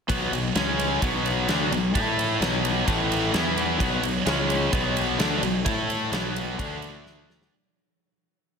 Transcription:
0.08 0.31 B1 loud
0.08 0.31 B2 medium
0.08 0.32 F#3 medium
0.08 0.32 B3 loud
0.08 kick loud
0.08 ride loud
0.32 0.54 B1 medium
0.32 0.51 B2 medium
0.32 0.52 F#3 medium
0.32 ride medium
0.55 0.99 C#2 medium
0.55 1.00 C#3 medium
0.55 1.01 G#3 loud
0.55 1.02 C#4 loud
0.55 snare loud
0.55 ride medium
0.79 ride medium
1.01 1.45 B1 medium
1.01 1.47 B2 medium
1.01 1.48 F#3 medium
1.01 1.48 B3 loud
1.01 kick loud
1.01 ride loud
1.26 ride medium
1.48 1.70 D2 medium
1.48 1.71 D3 medium
1.48 1.71 A3 loud
1.48 1.72 D4 medium
1.48 snare medium
1.48 ride medium
1.70 1.93 B1 medium
1.70 1.90 B2 medium
1.70 1.94 F#3 medium
1.70 ride medium
1.94 2.38 A2 loud
1.94 2.40 A3 loud
1.94 2.41 E4 loud
1.94 2.41 A4 loud
1.94 kick loud
1.94 ride loud
2.19 ride medium
2.40 2.84 B1 loud
2.40 2.86 B2 loud
2.40 2.87 F#3 loud
2.40 2.87 B3 loud
2.40 snare loud
2.40 ride medium
2.65 ride medium
2.86 3.31 A1 medium
2.86 3.33 A2 loud
2.86 3.32 E3 medium
2.86 3.34 A3 loud
2.86 kick loud
2.86 ride loud
3.12 ride medium
3.33 3.77 E2 medium
3.33 3.78 E3 medium
3.33 3.79 B3 loud
3.33 3.80 E4 medium
3.33 snare loud
3.33 ride medium
3.57 ride medium
3.79 4.02 B1 loud
3.79 4.01 B2 loud
3.79 4.02 F#3 loud
3.79 4.03 B3 loud
3.79 kick loud
3.79 ride medium
4.02 4.25 B1 medium
4.02 4.22 B2 medium
4.02 4.22 F#3 medium
4.02 ride medium
4.26 4.70 C#2 loud
4.26 4.71 C#3 medium
4.26 4.72 G#3 loud
4.26 4.73 C#4 loud
4.26 snare loud
4.26 ride medium
4.50 ride medium
4.72 5.16 B1 loud
4.72 5.18 B2 medium
4.72 5.19 F#3 loud
4.72 5.19 B3 loud
4.72 kick loud
4.72 ride loud
4.97 ride medium
5.19 5.41 D2 medium
5.19 5.42 D3 medium
5.19 5.42 A3 loud
5.19 5.43 D4 loud
5.19 snare loud
5.19 ride medium
5.42 5.64 B1 medium
5.42 5.61 B2 medium
5.42 5.61 F#3 medium
5.42 ride medium
5.64 6.09 A2 loud
5.64 6.11 A3 loud
5.64 6.12 E4 loud
5.64 6.12 A4 loud
5.64 kick loud
5.64 ride loud
5.90 ride medium
6.12 6.55 B1 medium
6.12 6.58 B2 medium
6.12 6.59 F#3 medium
6.12 6.59 B3 loud
6.12 snare loud
6.12 ride medium
6.36 ride medium
6.58 7.48 D2 medium
6.58 7.51 D3 medium
6.58 7.52 A3 medium
6.58 7.52 D4 loud
6.58 kick loud
6.58 ride loud
6.82 ride medium
7.06 snare medium
7.30 snare medium
7.42 snare medium

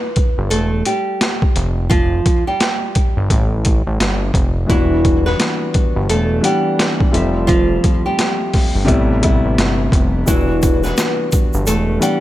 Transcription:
0.00 0.47 B3 medium
0.00 0.47 B4 medium
0.16 kick loud
0.16 closed hi-hat medium
0.38 0.50 G1 medium
0.50 0.83 E1 medium
0.50 0.82 A3 medium
0.50 0.82 A4 medium
0.50 closed hi-hat medium
0.85 1.87 G3 medium
0.85 1.87 G4 medium
0.85 closed hi-hat medium
1.21 snare loud
1.21 closed hi-hat medium
1.42 kick loud
1.56 2.21 F1 loud
1.56 closed hi-hat medium
1.90 2.43 F3 medium
1.90 2.43 F4 loud
1.90 kick loud
1.90 closed hi-hat medium
2.26 kick loud
2.26 closed hi-hat medium
2.47 4.18 G3 medium
2.47 4.17 G4 medium
2.60 snare loud
2.60 closed hi-hat medium
2.95 kick loud
2.95 closed hi-hat medium
3.17 3.29 G1 loud
3.30 3.83 A1 loud
3.30 kick loud
3.30 closed hi-hat medium
3.65 kick medium
3.65 closed hi-hat medium
3.87 3.99 A1 medium
4.00 4.32 G1 medium
4.00 snare loud
4.00 closed hi-hat medium
4.34 4.66 F1 medium
4.34 kick loud
4.34 closed hi-hat medium
4.66 5.35 E1 loud
4.66 5.98 E3 medium
4.66 5.98 G3 medium
4.66 5.99 B3 medium
4.66 5.99 D4 medium
4.66 5.22 E4 loud
4.66 5.99 F#4 medium
4.66 kick loud
4.66 closed hi-hat medium
4.70 5.23 E3 medium
5.05 kick loud
5.05 closed hi-hat medium
5.26 6.05 B3 medium
5.26 6.05 B4 medium
5.26 snare soft
5.40 snare loud
5.40 closed hi-hat loud
5.74 kick loud
5.74 closed hi-hat medium
5.96 6.08 G1 medium
6.09 6.41 E1 medium
6.09 6.41 A3 medium
6.09 6.41 A4 medium
6.09 closed hi-hat medium
6.41 7.12 E3 medium
6.41 7.11 G3 medium
6.41 7.13 B3 medium
6.41 7.13 D4 medium
6.41 7.45 G4 medium
6.41 7.13 F#5 medium
6.41 closed hi-hat medium
6.45 7.45 G3 medium
6.79 snare loud
6.79 closed hi-hat medium
7.00 kick loud
7.11 7.80 F1 medium
7.11 8.42 F3 medium
7.11 8.43 G3 medium
7.11 8.43 A3 medium
7.11 8.43 C4 medium
7.11 8.44 E5 medium
7.11 closed hi-hat medium
7.47 8.01 F3 medium
7.47 8.01 F4 loud
7.47 kick loud
7.47 closed hi-hat medium
7.84 kick loud
7.84 closed hi-hat medium
8.06 9.76 G3 medium
8.06 9.76 G4 medium
8.19 snare loud
8.19 closed hi-hat loud
8.53 kick loud
8.53 snare soft
8.53 open hi-hat medium
8.76 8.87 G1 medium
8.85 9.41 A1 loud
8.85 9.19 C3 loud
8.85 9.19 G3 medium
8.85 9.19 A3 medium
8.85 9.20 B3 medium
8.85 9.20 E4 loud
8.85 kick loud
8.85 closed hi-hat medium
9.21 10.19 C3 medium
9.21 10.20 G3 medium
9.21 10.20 A3 medium
9.21 10.20 B3 medium
9.21 10.21 E4 loud
9.21 kick medium
9.21 closed hi-hat medium
9.45 9.57 A1 medium
9.58 9.90 G1 medium
9.58 snare loud
9.58 closed hi-hat medium
9.92 10.24 F1 medium
9.92 kick loud
9.92 closed hi-hat medium
10.25 10.94 E1 loud
10.25 11.56 E3 medium
10.25 10.81 E3 medium
10.25 11.56 G3 medium
10.25 11.57 B3 medium
10.25 11.57 D4 medium
10.25 10.81 E4 loud
10.25 11.58 F#4 medium
10.25 kick loud
10.25 closed hi-hat medium
10.25 shaker medium
10.62 kick loud
10.62 closed hi-hat medium
10.62 shaker medium
10.84 11.63 B3 medium
10.84 11.63 B4 medium
10.84 snare soft
10.84 shaker soft
10.97 snare loud
10.97 closed hi-hat loud
10.97 shaker medium
11.32 kick loud
11.32 closed hi-hat medium
11.32 shaker medium
11.53 11.66 G1 medium
11.53 shaker medium
11.67 11.99 E1 medium
11.67 11.99 A3 medium
11.67 11.98 A4 medium
11.67 closed hi-hat medium
11.67 shaker medium
11.99 12.20 E3 medium
11.99 12.20 G3 medium
11.99 12.20 B3 medium
11.99 12.20 D4 medium
11.99 12.20 G4 medium
11.99 12.20 F#5 medium
11.99 closed hi-hat medium
11.99 shaker soft
12.03 12.20 G3 medium

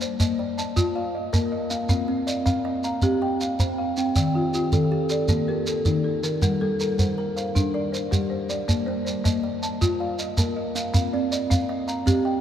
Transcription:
0.00 0.20 A#3 medium
0.00 0.58 C5 medium
0.00 0.38 D5 medium
0.00 shekere medium
0.20 0.58 A#3 medium
0.20 0.57 D#5 medium
0.20 shekere medium
0.39 0.77 D5 medium
0.58 1.15 D#5 medium
0.58 1.14 A5 medium
0.58 shekere medium
0.76 1.14 A#3 medium
0.76 1.14 F4 medium
0.76 shekere medium
0.95 1.52 D5 medium
0.95 1.52 F5 medium
1.15 1.51 D#5 medium
1.33 1.71 A#3 medium
1.33 1.71 A#4 medium
1.33 shekere medium
1.52 2.09 D#5 medium
1.70 2.09 A#3 medium
1.70 2.08 F5 medium
1.70 shekere medium
1.89 2.27 C4 medium
1.89 2.28 F5 medium
1.89 shekere medium
2.08 2.46 C4 medium
2.27 2.84 D5 medium
2.27 2.64 D#5 medium
2.27 shekere medium
2.46 2.84 C4 medium
2.46 2.83 F5 medium
2.46 shekere medium
2.65 3.03 D#5 medium
2.84 3.41 F5 medium
2.84 3.41 A#5 medium
2.84 shekere medium
3.02 3.41 C4 medium
3.02 3.41 G4 medium
3.02 shekere medium
3.22 3.78 D#5 medium
3.22 3.78 G5 medium
3.41 3.77 F5 medium
3.41 shekere medium
3.59 3.97 C4 medium
3.59 3.97 C5 medium
3.59 shekere medium
3.78 4.35 F5 medium
3.97 4.35 C4 medium
3.97 4.35 G5 medium
3.97 shekere medium
4.16 4.54 D#3 medium
4.16 4.54 G5 medium
4.16 shekere medium
4.34 4.72 D#3 medium
4.34 4.53 F4 medium
4.53 5.11 F4 medium
4.53 4.90 G4 medium
4.53 shekere medium
4.72 5.11 D#3 medium
4.72 5.09 A4 medium
4.72 shekere medium
4.92 5.29 G4 medium
5.09 5.67 A4 medium
5.09 5.67 D5 medium
5.09 shekere medium
5.28 5.67 D#3 medium
5.28 5.67 A#3 medium
5.28 shekere medium
5.48 6.05 G4 medium
5.48 6.05 A#4 medium
5.67 6.03 A4 medium
5.67 shekere medium
5.85 6.23 D#3 medium
5.85 6.23 D#4 medium
5.85 shekere medium
6.04 6.60 A4 medium
6.23 6.61 D#3 medium
6.23 6.61 A#4 medium
6.23 shekere medium
6.42 6.80 G3 medium
6.42 6.80 A#4 medium
6.42 shekere medium
6.61 6.99 G3 medium
6.61 6.79 A4 medium
6.80 7.36 A4 medium
6.80 7.17 A#4 medium
6.80 shekere medium
6.99 7.37 G3 medium
6.99 7.36 C5 medium
6.99 shekere medium
7.18 7.55 A#4 medium
7.36 7.93 C5 medium
7.36 7.93 F5 medium
7.36 shekere medium
7.55 7.93 G3 medium
7.55 7.93 D4 medium
7.55 shekere medium
7.74 8.31 A#4 medium
7.74 8.31 D5 medium
7.92 8.29 C5 medium
7.92 shekere medium
8.11 8.49 G3 medium
8.11 8.49 G4 medium
8.11 shekere medium
8.30 8.85 C5 medium
8.49 8.87 G3 medium
8.49 8.87 D5 medium
8.49 shekere medium
8.68 9.06 A#3 medium
8.68 9.06 D5 medium
8.68 shekere medium
8.86 9.25 A#3 medium
8.86 9.04 C5 medium
9.05 9.62 C5 medium
9.05 9.42 D5 medium
9.05 shekere medium
9.24 9.62 A#3 medium
9.24 9.62 D#5 medium
9.24 shekere medium
9.44 9.81 D5 medium
9.63 10.19 D#5 medium
9.63 10.19 A5 medium
9.63 shekere medium
9.81 10.19 A#3 medium
9.81 10.19 F4 medium
9.81 shekere medium
10.00 10.57 D5 medium
10.00 10.57 F5 medium
10.19 10.55 D#5 medium
10.19 shekere medium
10.37 10.75 A#3 medium
10.37 10.76 A#4 medium
10.37 shekere medium
10.56 11.13 D#5 medium
10.75 11.13 A#3 medium
10.75 11.13 F5 medium
10.75 shekere medium
10.94 11.32 C4 medium
10.94 11.32 F5 medium
10.94 shekere medium
11.13 11.51 C4 medium
11.13 11.30 D5 medium
11.32 11.88 D5 medium
11.32 11.68 D#5 medium
11.32 shekere medium
11.50 11.88 C4 medium
11.50 11.86 F5 medium
11.50 shekere medium
11.69 12.07 D#5 medium
11.88 12.41 F5 medium
11.88 12.41 A#5 medium
11.88 shekere medium
12.06 12.41 C4 medium
12.06 12.41 G4 medium
12.06 shekere medium
12.25 12.41 D#5 medium
12.25 12.41 G5 medium

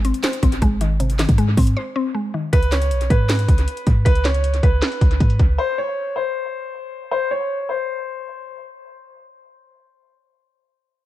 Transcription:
0.00 0.12 G#1 loud
0.00 0.43 C3 loud
0.00 0.62 D#3 medium
0.00 0.61 G#3 medium
0.05 0.41 C4 medium
0.05 closed hi-hat medium
0.14 closed hi-hat medium
0.23 1.19 C5 medium
0.23 snare loud
0.23 clap loud
0.23 closed hi-hat medium
0.33 closed hi-hat medium
0.43 0.61 G#1 loud
0.43 1.38 C4 medium
0.43 kick loud
0.43 closed hi-hat medium
0.52 closed hi-hat medium
0.62 1.26 G#1 loud
0.62 1.37 G#3 loud
0.62 kick medium
0.62 closed hi-hat medium
0.81 1.18 D#3 medium
0.81 closed hi-hat medium
1.00 1.95 C3 loud
1.00 closed hi-hat medium
1.10 closed hi-hat medium
1.19 2.15 D#3 medium
1.19 snare medium
1.19 clap medium
1.19 closed hi-hat medium
1.29 1.56 G#2 loud
1.29 kick medium
1.29 closed hi-hat medium
1.38 2.13 G#3 medium
1.38 closed hi-hat medium
1.57 1.76 G#2 loud
1.57 1.94 C4 medium
1.57 kick loud
1.57 open hi-hat medium
1.67 closed hi-hat medium
1.77 2.53 C5 loud
1.96 2.53 C4 medium
2.15 2.53 G#3 medium
2.34 2.53 D#3 medium
2.53 2.93 C#2 loud
2.53 2.71 B4 loud
2.53 kick loud
2.53 closed hi-hat medium
2.63 closed hi-hat medium
2.72 3.08 C#5 medium
2.72 snare medium
2.72 clap medium
2.72 closed hi-hat medium
2.82 closed hi-hat medium
2.91 3.09 B1 loud
2.91 closed hi-hat medium
3.01 closed hi-hat medium
3.10 3.47 G#2 loud
3.10 4.02 B4 medium
3.10 kick loud
3.10 closed hi-hat medium
3.29 snare loud
3.29 clap medium
3.29 closed hi-hat medium
3.39 closed hi-hat medium
3.48 3.67 C#2 loud
3.48 kick loud
3.48 closed hi-hat medium
3.58 closed hi-hat medium
3.68 closed hi-hat medium
3.77 closed hi-hat medium
3.87 4.05 G#2 loud
3.87 kick medium
3.87 closed hi-hat medium
4.05 4.61 C#2 loud
4.05 4.23 B4 medium
4.05 kick loud
4.05 closed hi-hat medium
4.15 closed hi-hat medium
4.25 4.61 C#5 medium
4.25 snare medium
4.25 clap medium
4.25 closed hi-hat medium
4.34 closed hi-hat medium
4.44 closed hi-hat medium
4.54 closed hi-hat medium
4.63 4.81 C#2 loud
4.63 5.55 B4 medium
4.63 kick loud
4.63 closed hi-hat medium
4.82 snare loud
4.82 clap loud
4.82 closed hi-hat medium
4.92 closed hi-hat medium
5.01 5.20 C#2 loud
5.01 kick loud
5.01 closed hi-hat medium
5.11 closed hi-hat soft
5.20 5.39 G#2 loud
5.20 kick medium
5.20 closed hi-hat medium
5.30 closed hi-hat soft
5.39 5.58 C#2 loud
5.39 kick medium
5.39 closed hi-hat medium
5.58 5.76 C5 loud
5.78 6.14 C#5 medium
6.16 7.07 C5 medium
7.11 7.29 C5 loud
7.31 7.67 C#5 medium
7.69 8.60 C5 medium

